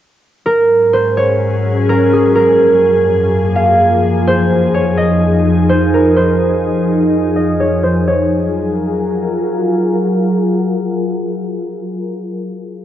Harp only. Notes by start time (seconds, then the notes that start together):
0.46 A#4
0.93 C5
1.17 C#5
1.89 A#4
2.13 G#4
2.35 A#4
3.56 F5
4.27 C5
4.74 C#5
4.97 D#5
5.69 C5
5.94 A#4
6.16 C5
7.36 D#5
7.60 C#5
7.83 C5
8.08 C#5